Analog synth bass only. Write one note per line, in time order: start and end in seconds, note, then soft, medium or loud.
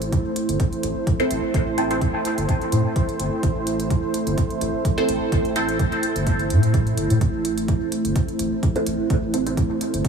0.00 0.20 A1 loud
0.49 0.57 G1 medium
0.83 0.93 A1 loud
1.31 1.40 A1 medium
1.54 2.09 A1 loud
2.38 2.46 G1 medium
2.72 2.82 A2 loud
3.20 3.29 G1 medium
3.43 3.98 A1 loud
4.27 4.35 G1 loud
4.61 4.71 A1 loud
5.09 5.18 A1 medium
5.32 5.87 A1 loud
6.16 6.52 G1 loud
6.50 6.93 A2 loud
6.98 7.07 G1 medium
7.10 7.18 A2 medium
7.21 7.76 A1 loud
8.05 8.13 G1 medium
8.39 8.49 A1 loud
8.87 8.96 A1 medium
9.10 9.65 A1 loud
9.94 10.02 G1 medium